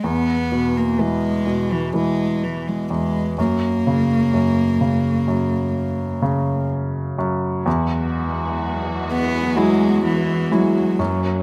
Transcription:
<<
  \new Staff \with { instrumentName = "String section" } { \time 4/4 \key e \lydian \tempo 4 = 63 r1 | r1 | <e fis gis b fis'>2.~ <e fis gis b fis'>8 <fis ais cis'>8 | }
  \new Staff \with { instrumentName = "Cello" } { \clef bass \time 4/4 \key e \lydian b8. ais16 gis8. e16 gis8 e16 gis16 gis8 ais8~ | ais2. r4 | r4. b8 gis8 e8 fis8. r16 | }
  \new Staff \with { instrumentName = "Grand piano" } { \clef bass \time 4/4 \key e \lydian e,8 b,8 e8 b,8 e4 e,8 fis,8 | cis8 fis,8 cis8 fis,4 cis4 fis,8 | e,2 <fis gis e'>4 <fis gis e'>8 fis,8 | }
>>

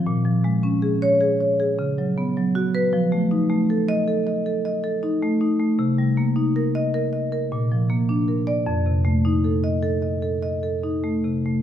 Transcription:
\new Staff \with { instrumentName = "Marimba" } { \time 5/4 \key des \mixolydian \tempo 4 = 104 << { r4 \tuplet 3/2 { r4 des''8 } r2 \tuplet 3/2 { r4 ces''8 } | \key f \mixolydian r4 \tuplet 3/2 { r4 ees''8 } r2. | r4 \tuplet 3/2 { r4 ees''8 } r2 \tuplet 3/2 { r4 d''8 } | r4 \tuplet 3/2 { r4 ees''8 } r2. | } \\ { \tuplet 3/2 { bes,8 f8 aes8 des'8 aes'4 aes'8 des''8 aes'8 des8 ges8 ces'8 ges8 ges'4 } | \tuplet 3/2 { f8 a8 ees'8 a8 a'4 a'8 ees''8 a'8 ees''8 a'8 ees'8 a8 ees'8 a8 } | \tuplet 3/2 { c8 g8 bes8 ees'8 bes'4 bes'8 ees''8 bes'8 bes,8 f8 bes8 d'8 bes'4 } | \tuplet 3/2 { f,8 c8 a8 ees'8 a'4 a'8 ees''8 a'8 ees''8 a'8 ees'8 a8 c8 a8 } | } >> }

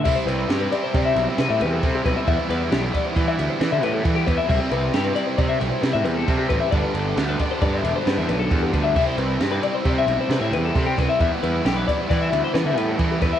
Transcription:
<<
  \new Staff \with { instrumentName = "Clean electric guitar" } { \time 5/4 \key c \lydian \tempo 4 = 134 e''16 c''16 b'8 g'16 b'16 d''16 c''16 d''16 e''8 c''16 b'16 e''16 b'16 a'8 g'16 b'16 e''16 | e''16 c''16 b'8 g'16 b'16 d''16 c''16 d''16 e''8 c''16 b'16 e''16 b'16 a'8 g'16 b'16 e''16 | e''16 c''16 b'8 g'16 b'16 d''16 c''16 d''16 e''8 c''16 b'16 e''16 b'16 a'8 g'16 b'16 e''16 | d''16 b'16 a'8 g'16 b'16 d''16 c''16 d''16 e''8 c''16 b'16 e''16 b'16 a'8 g'16 b'16 e''16 |
e''16 c''16 b'8 g'16 b'16 d''16 c''16 d''16 e''8 c''16 b'16 e''16 b'16 a'8 g'16 b'16 e''16 | e''16 c''16 b'8 g'16 b'16 d''16 c''16 d''16 e''8 c''16 b'16 e''16 b'16 a'8 g'16 b'16 e''16 | }
  \new Staff \with { instrumentName = "Clean electric guitar" } { \time 5/4 \key c \lydian <g e'>1~ <g e'>4 | r1 r4 | r1 r4 | r1 r4 |
r1 r4 | r1 r4 | }
  \new Staff \with { instrumentName = "Overdriven electric guitar" } { \time 5/4 \key c \lydian <c g c' e'>8 <g c' e'>8 <c g c' e'>8 <g c' e'>8 <c g c' e'>8 <g c' e'>8 <c g c' e'>4 <c g c' e'>8 <g c' e'>8 | <e g b e'>8 <g b e'>8 <e g b e'>8 <g b e'>8 <e g b e'>8 <g b e'>8 <e g b e'>4 <e g b e'>8 <g b e'>8 | <c g c' e'>8 <g c' e'>8 <c g c' e'>8 <g c' e'>8 <c g c' e'>8 <g c' e'>8 <c g c' e'>4 <c g c' e'>8 <g c' e'>8 | <g, d g b d'>8 <g b d'>8 <d g b d'>8 <g b d'>8 <g, d g b d'>8 <g b d'>8 <d g b d'>4 <g, d g b d'>8 <g b d'>8 |
<c g c' e'>8 <g c' e'>8 <c g c' e'>8 <g c' e'>8 <c g c' e'>8 <g c' e'>8 <c g c' e'>4 <c g c' e'>8 <g c' e'>8 | <e g b e'>8 <g b e'>8 <e g b e'>8 <g b e'>8 <e g b e'>8 <g b e'>8 <e g b e'>4 <e g b e'>8 <g b e'>8 | }
  \new Staff \with { instrumentName = "Picked electric bass" } { \clef bass \time 5/4 \key c \lydian c,16 r16 c,8 g,8 r8 c8 b,,16 r16 c16 a,16 e,8 c8 b,,16 r16 | e,16 r16 e,8 b,,8 r8 e8 d,16 r16 e16 d16 a,8 e8 e,16 r16 | c,16 r16 c,8 g,8 r8 c8 b,,16 r16 c16 a,16 e,8 c8 a,,16 r16 | g,,16 r16 g,,8 d,8 r8 g,8 e,,16 r16 g,16 e,16 b,,8 e,8 d,8 |
c,16 r16 c,8 g,8 r8 c8 b,,16 r16 c16 a,16 e,8 c8 c,16 r16 | e,16 r16 e,8 b,,8 r8 e8 d,16 r16 e16 d16 a,8 e8 e,16 r16 | }
  \new DrumStaff \with { instrumentName = "Drums" } \drummode { \time 5/4 <cymc bd>8 cymr8 <cymr sn>8 <cymr sn>8 <bd cymr sn>8 <cymr sn>8 <cymr sn>8 cymr8 <bd cymr sn>8 <bd cymr>8 | <bd cymr>8 cymr8 <cymr sn>8 <bd cymr>8 <bd cymr>8 cymr8 <cymr sn>8 cymr8 <bd cymr>8 <bd cymr>8 | <cymc bd>8 cymr8 <cymr sn>8 cymr8 <bd cymr>8 <cymr sn>8 <cymr sn>8 cymr8 <bd cymr sn>8 <bd cymr>8 | <bd cymr>8 cymr8 <cymr sn>8 <bd cymr sn>8 <bd cymr sn>8 cymr8 <cymr sn>8 cymr8 <bd cymr>8 <bd cymr>8 |
<cymc bd>8 cymr8 <cymr sn>8 cymr8 <bd cymr>8 cymr8 <cymr sn>8 cymr8 <bd cymr>8 <bd cymr sn>8 | <bd cymr>8 cymr8 <cymr sn>8 <bd cymr>8 <bd cymr>8 <cymr sn>8 <cymr sn>8 cymr8 <bd cymr>8 <bd cymr sn>8 | }
>>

